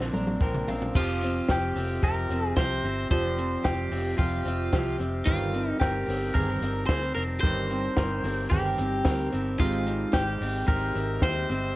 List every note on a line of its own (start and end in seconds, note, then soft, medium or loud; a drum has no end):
0.00 0.13 A#2 medium
0.00 0.96 A#2 medium
0.00 0.14 D3 medium
0.00 0.12 F3 medium
0.00 0.14 F3 medium
0.00 0.14 C4 medium
0.00 0.13 D4 loud
0.00 0.14 D4 medium
0.00 0.64 D4 medium
0.00 0.12 A#4 medium
0.00 0.41 A#4 medium
0.00 0.64 A#4 medium
0.00 0.38 C5 medium
0.00 0.64 C5 medium
0.00 snare soft
0.13 0.37 A#1 loud
0.13 0.39 F3 medium
0.13 0.40 C4 medium
0.13 0.41 D4 medium
0.13 0.41 A#4 medium
0.13 0.39 A#5 medium
0.13 high tom medium
0.27 high tom medium
0.40 0.63 A#1 medium
0.40 0.68 F3 medium
0.40 0.68 C4 medium
0.40 0.68 D4 medium
0.40 0.66 A#4 medium
0.40 0.67 G5 medium
0.40 kick loud
0.54 mid tom medium
0.67 0.90 A#1 medium
0.67 0.93 F3 soft
0.67 0.93 C4 medium
0.67 0.95 D4 medium
0.67 0.95 A#4 medium
0.67 0.93 F5 medium
0.67 floor tom medium
0.82 floor tom medium
0.94 1.40 F1 loud
0.94 1.22 F3 medium
0.94 1.22 C4 medium
0.94 3.07 C4 medium
0.94 1.22 F4 medium
0.94 3.08 F4 medium
0.94 1.51 F4 medium
0.94 3.08 G4 medium
0.94 1.21 G4 medium
0.94 3.08 C5 medium
0.94 1.46 F6 medium
0.94 kick loud
0.94 crash medium
1.22 1.48 C4 medium
1.22 1.48 F4 medium
1.22 1.49 G4 medium
1.22 hi-hat pedal medium
1.22 open hi-hat medium
1.47 1.71 F1 loud
1.47 1.75 F3 medium
1.47 1.76 C4 medium
1.47 1.75 F4 medium
1.47 1.73 G4 medium
1.47 2.00 G6 medium
1.47 kick medium
1.47 snare loud
1.47 hi-hat pedal medium
1.47 open hi-hat medium
1.51 2.06 G4 medium
1.74 1.98 F1 medium
1.74 2.02 C4 soft
1.74 2.03 F4 medium
1.74 2.02 G4 medium
1.74 hi-hat pedal medium
1.74 open hi-hat medium
2.02 2.25 F1 loud
2.02 2.30 F3 medium
2.02 2.30 C4 medium
2.02 2.29 F4 medium
2.02 2.28 G4 medium
2.02 2.56 A#4 medium
2.02 2.54 A#6 medium
2.02 kick loud
2.02 hi-hat pedal medium
2.02 open hi-hat medium
2.29 2.52 F1 loud
2.29 2.57 C4 soft
2.29 2.58 F4 medium
2.29 2.57 G4 medium
2.29 hi-hat pedal medium
2.29 open hi-hat medium
2.56 2.79 C2 medium
2.56 2.84 F3 medium
2.56 2.85 C4 medium
2.56 2.85 F4 medium
2.56 2.83 G4 medium
2.56 3.07 C5 loud
2.56 3.09 C7 loud
2.56 kick loud
2.56 snare loud
2.56 hi-hat pedal medium
2.56 open hi-hat medium
2.83 3.06 G1 medium
2.83 3.11 F4 medium
2.83 3.11 G4 medium
2.83 hi-hat pedal medium
2.83 open hi-hat medium
2.88 3.10 C4 soft
3.10 3.55 F1 loud
3.10 3.38 F3 medium
3.10 5.24 C4 medium
3.10 3.39 C4 medium
3.10 5.23 F4 medium
3.10 3.38 F4 medium
3.10 5.24 G4 medium
3.10 3.37 G4 medium
3.10 3.67 C5 loud
3.10 5.24 D5 medium
3.10 3.62 C7 medium
3.10 kick loud
3.10 hi-hat pedal medium
3.10 open hi-hat medium
3.38 3.65 F4 soft
3.38 3.65 G4 medium
3.38 hi-hat pedal medium
3.38 open hi-hat medium
3.42 3.65 C4 soft
3.64 3.87 F1 loud
3.64 3.92 F3 medium
3.64 3.93 C4 medium
3.64 3.92 F4 medium
3.64 4.15 G4 medium
3.64 3.90 G4 medium
3.64 4.15 G6 medium
3.64 kick medium
3.64 snare loud
3.64 hi-hat pedal medium
3.64 open hi-hat medium
3.91 4.14 F1 medium
3.91 4.19 C4 soft
3.91 4.20 F4 medium
3.91 4.19 G4 medium
3.91 hi-hat pedal medium
3.91 open hi-hat medium
4.18 4.41 F1 loud
4.18 4.46 F3 medium
4.18 4.47 C4 medium
4.18 4.96 F4 medium
4.18 4.47 F4 medium
4.18 4.45 G4 medium
4.18 4.96 F6 medium
4.18 kick loud
4.18 hi-hat pedal medium
4.18 open hi-hat medium
4.46 4.68 F1 loud
4.46 4.72 C4 soft
4.46 4.73 F4 medium
4.46 4.73 G4 medium
4.46 hi-hat pedal medium
4.46 open hi-hat medium
4.72 4.95 C2 medium
4.72 5.00 F3 medium
4.72 5.00 C4 medium
4.72 4.99 F4 medium
4.72 4.97 G4 medium
4.72 kick loud
4.72 snare loud
4.72 hi-hat pedal medium
4.72 open hi-hat medium
4.98 5.22 F1 medium
4.98 5.25 C4 medium
4.98 5.27 F4 medium
4.98 5.26 G4 medium
4.98 hi-hat pedal medium
4.98 open hi-hat medium
5.25 5.72 G1 loud
5.25 5.53 G2 medium
5.25 5.54 D#3 medium
5.25 5.54 G3 medium
5.25 5.54 C4 medium
5.25 7.39 C4 medium
5.25 7.39 D#4 medium
5.25 5.79 F4 medium
5.25 7.39 G4 medium
5.25 5.52 G4 medium
5.25 7.40 A#4 medium
5.25 5.51 A#4 medium
5.25 5.78 F6 medium
5.25 kick loud
5.25 hi-hat pedal medium
5.25 open hi-hat medium
5.53 5.78 G3 soft
5.53 5.80 C4 medium
5.53 5.81 G4 medium
5.53 5.81 A#4 medium
5.53 hi-hat pedal medium
5.53 open hi-hat medium
5.80 6.04 G1 loud
5.80 6.08 G3 medium
5.80 6.08 C4 medium
5.80 6.36 G4 medium
5.80 6.07 G4 medium
5.80 6.05 A#4 medium
5.80 6.32 G6 medium
5.80 kick loud
5.80 snare loud
5.80 hi-hat pedal medium
5.80 open hi-hat medium
6.06 6.31 G1 loud
6.06 6.34 G3 soft
6.06 6.35 C4 medium
6.06 6.35 G4 medium
6.06 6.35 A#4 medium
6.06 hi-hat pedal medium
6.06 open hi-hat medium
6.34 6.57 G1 loud
6.34 6.62 G2 medium
6.34 6.62 D#3 medium
6.34 6.62 G3 medium
6.34 6.61 C4 medium
6.34 6.60 G4 medium
6.34 6.50 G#4 medium
6.34 6.86 A#4 loud
6.34 6.58 A#4 medium
6.34 6.86 A#6 medium
6.34 kick loud
6.34 hi-hat pedal medium
6.34 open hi-hat medium
6.50 6.89 A#4 medium
6.59 6.84 G1 loud
6.59 6.87 G3 soft
6.59 6.89 C4 soft
6.59 6.89 G4 medium
6.59 6.88 A#4 medium
6.59 hi-hat pedal medium
6.59 open hi-hat medium
6.86 7.11 D2 medium
6.86 7.16 G3 medium
6.86 7.17 C4 medium
6.86 7.03 G#4 medium
6.86 7.14 C5 loud
6.86 7.14 C7 loud
6.86 kick loud
6.86 snare loud
6.86 hi-hat pedal medium
6.86 open hi-hat medium
6.91 7.16 G4 medium
6.91 7.15 A#4 medium
7.03 7.97 A#4 medium
7.15 7.38 F1 medium
7.15 7.43 C4 soft
7.15 7.43 G4 soft
7.15 7.22 A#4 loud
7.15 7.43 A#4 medium
7.15 7.28 A#6 medium
7.15 hi-hat pedal medium
7.15 open hi-hat medium
7.19 7.42 G3 soft
7.40 7.88 G1 loud
7.40 7.70 G2 medium
7.40 7.71 D#3 medium
7.40 7.71 G3 medium
7.40 9.02 C4 medium
7.40 7.71 C4 medium
7.40 9.02 D#4 medium
7.40 9.02 G4 medium
7.40 9.02 A#4 medium
7.40 8.49 C5 loud
7.40 8.47 C7 medium
7.40 kick loud
7.40 hi-hat pedal medium
7.40 open hi-hat medium
7.45 7.70 G4 medium
7.45 7.68 A#4 medium
7.70 7.95 G3 soft
7.70 7.96 C4 soft
7.70 7.97 G4 medium
7.70 7.97 A#4 medium
7.70 hi-hat pedal medium
7.70 open hi-hat medium
7.96 8.20 G1 loud
7.96 8.24 G3 medium
7.96 8.25 C4 medium
7.96 8.24 G4 medium
7.96 8.22 A#4 medium
7.96 kick medium
7.96 snare loud
7.96 hi-hat pedal medium
7.96 open hi-hat medium
8.23 8.46 G1 loud
8.23 8.49 G3 medium
8.23 8.50 C4 medium
8.23 8.50 G4 medium
8.23 8.51 A#4 medium
8.23 hi-hat pedal medium
8.23 open hi-hat medium
8.50 8.73 G1 loud
8.50 8.78 G2 medium
8.50 8.78 D#3 medium
8.50 8.78 G3 medium
8.50 8.79 C4 medium
8.50 9.28 G4 medium
8.50 8.78 G4 medium
8.50 8.65 G#4 medium
8.50 8.77 A#4 medium
8.50 9.29 G6 medium
8.50 kick loud
8.50 hi-hat pedal medium
8.50 open hi-hat medium
8.65 9.04 A#4 medium
8.78 9.01 G1 loud
8.78 9.04 G3 soft
8.78 9.05 C4 medium
8.78 9.06 G4 soft
8.78 9.05 A#4 medium
8.78 hi-hat pedal medium
8.78 open hi-hat medium
9.05 9.28 D2 medium
9.05 9.32 G3 medium
9.05 9.58 C4 medium
9.05 9.33 C4 medium
9.05 9.58 D#4 soft
9.05 9.58 G4 soft
9.05 9.32 G4 medium
9.05 9.31 A#4 medium
9.05 9.60 C5 medium
9.05 kick loud
9.05 snare medium
9.05 hi-hat pedal medium
9.05 open hi-hat medium
9.32 9.55 G1 medium
9.32 9.59 C4 medium
9.32 9.60 G4 medium
9.32 9.59 A#4 medium
9.32 hi-hat pedal medium
9.32 open hi-hat medium
9.36 9.59 G3 soft
9.59 10.04 G#1 loud
9.59 9.87 G#3 medium
9.59 11.72 G#3 medium
9.59 11.72 C4 medium
9.59 9.87 C4 medium
9.59 11.72 D#4 medium
9.59 9.87 D#4 medium
9.59 10.16 F4 medium
9.59 11.72 G4 medium
9.59 9.85 G4 medium
9.59 10.11 F6 medium
9.59 kick loud
9.59 hi-hat pedal medium
9.59 open hi-hat medium
9.86 10.13 C4 soft
9.86 10.15 D#4 medium
9.86 10.14 G4 medium
9.86 hi-hat pedal medium
9.86 open hi-hat medium
10.13 10.36 G#1 loud
10.13 10.41 G#3 medium
10.13 10.41 C4 medium
10.13 10.41 D#4 medium
10.13 10.67 G4 medium
10.13 10.39 G4 medium
10.13 10.64 G6 medium
10.13 kick medium
10.13 snare loud
10.13 hi-hat pedal medium
10.13 open hi-hat medium
10.40 10.63 G#1 medium
10.40 10.66 C4 medium
10.40 10.67 D#4 medium
10.40 10.68 G4 medium
10.40 hi-hat pedal medium
10.40 open hi-hat medium
10.67 10.90 G#1 loud
10.67 10.95 G#3 medium
10.67 10.95 C4 medium
10.67 10.94 D#4 medium
10.67 10.92 G4 medium
10.67 11.23 A#4 loud
10.67 11.18 A#6 medium
10.67 kick loud
10.67 hi-hat pedal medium
10.67 open hi-hat medium
10.94 11.18 G#1 loud
10.94 11.20 C4 soft
10.94 11.21 D#4 medium
10.94 11.22 G4 medium
10.94 hi-hat pedal medium
10.94 open hi-hat medium
11.20 11.44 D#2 medium
11.20 11.48 G#3 medium
11.20 11.49 C4 medium
11.20 11.48 D#4 medium
11.20 11.46 G4 medium
11.20 11.76 C5 loud
11.20 11.73 C7 loud
11.20 kick loud
11.20 snare loud
11.20 hi-hat pedal medium
11.20 open hi-hat medium
11.48 11.72 G1 medium
11.48 11.75 C4 soft
11.48 11.75 D#4 soft
11.48 11.75 G4 medium
11.48 hi-hat pedal medium
11.48 open hi-hat medium